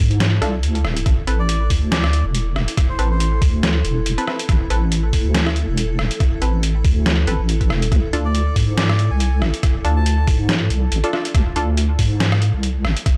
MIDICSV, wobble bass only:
0, 0, Header, 1, 2, 480
1, 0, Start_track
1, 0, Key_signature, 0, "minor"
1, 0, Tempo, 428571
1, 1187, Time_signature, 4, 2, 24, 8
1, 14753, End_track
2, 0, Start_track
2, 0, Title_t, "Wobble bass"
2, 0, Program_c, 0, 39
2, 0, Note_on_c, 0, 44, 94
2, 454, Note_off_c, 0, 44, 0
2, 467, Note_on_c, 0, 36, 91
2, 708, Note_on_c, 0, 38, 100
2, 724, Note_off_c, 0, 36, 0
2, 947, Note_on_c, 0, 26, 83
2, 964, Note_off_c, 0, 38, 0
2, 1170, Note_off_c, 0, 26, 0
2, 1188, Note_on_c, 0, 33, 102
2, 1311, Note_off_c, 0, 33, 0
2, 1427, Note_on_c, 0, 33, 98
2, 1894, Note_off_c, 0, 33, 0
2, 1907, Note_on_c, 0, 38, 98
2, 2504, Note_off_c, 0, 38, 0
2, 2521, Note_on_c, 0, 28, 86
2, 2854, Note_off_c, 0, 28, 0
2, 2867, Note_on_c, 0, 28, 90
2, 2991, Note_off_c, 0, 28, 0
2, 3346, Note_on_c, 0, 33, 99
2, 3813, Note_off_c, 0, 33, 0
2, 3827, Note_on_c, 0, 38, 96
2, 4294, Note_off_c, 0, 38, 0
2, 4307, Note_on_c, 0, 28, 95
2, 4530, Note_off_c, 0, 28, 0
2, 4547, Note_on_c, 0, 28, 92
2, 4670, Note_off_c, 0, 28, 0
2, 5027, Note_on_c, 0, 33, 103
2, 5151, Note_off_c, 0, 33, 0
2, 5267, Note_on_c, 0, 33, 101
2, 5734, Note_off_c, 0, 33, 0
2, 5747, Note_on_c, 0, 38, 92
2, 6344, Note_off_c, 0, 38, 0
2, 6362, Note_on_c, 0, 28, 85
2, 6694, Note_off_c, 0, 28, 0
2, 6707, Note_on_c, 0, 28, 89
2, 6831, Note_off_c, 0, 28, 0
2, 7187, Note_on_c, 0, 33, 98
2, 7654, Note_off_c, 0, 33, 0
2, 7667, Note_on_c, 0, 38, 96
2, 8134, Note_off_c, 0, 38, 0
2, 8148, Note_on_c, 0, 33, 99
2, 8271, Note_off_c, 0, 33, 0
2, 8281, Note_on_c, 0, 33, 94
2, 8628, Note_on_c, 0, 28, 107
2, 8645, Note_off_c, 0, 33, 0
2, 8851, Note_off_c, 0, 28, 0
2, 8867, Note_on_c, 0, 38, 103
2, 8991, Note_off_c, 0, 38, 0
2, 9107, Note_on_c, 0, 38, 100
2, 9574, Note_off_c, 0, 38, 0
2, 9588, Note_on_c, 0, 44, 93
2, 10185, Note_off_c, 0, 44, 0
2, 10202, Note_on_c, 0, 36, 86
2, 10548, Note_on_c, 0, 33, 92
2, 10565, Note_off_c, 0, 36, 0
2, 10671, Note_off_c, 0, 33, 0
2, 11027, Note_on_c, 0, 38, 100
2, 11494, Note_off_c, 0, 38, 0
2, 11508, Note_on_c, 0, 44, 93
2, 11974, Note_off_c, 0, 44, 0
2, 11988, Note_on_c, 0, 36, 95
2, 12211, Note_off_c, 0, 36, 0
2, 12228, Note_on_c, 0, 33, 94
2, 12351, Note_off_c, 0, 33, 0
2, 12707, Note_on_c, 0, 38, 101
2, 12831, Note_off_c, 0, 38, 0
2, 12948, Note_on_c, 0, 38, 101
2, 13414, Note_off_c, 0, 38, 0
2, 13428, Note_on_c, 0, 44, 94
2, 14025, Note_off_c, 0, 44, 0
2, 14042, Note_on_c, 0, 36, 84
2, 14388, Note_on_c, 0, 33, 89
2, 14405, Note_off_c, 0, 36, 0
2, 14511, Note_off_c, 0, 33, 0
2, 14753, End_track
0, 0, End_of_file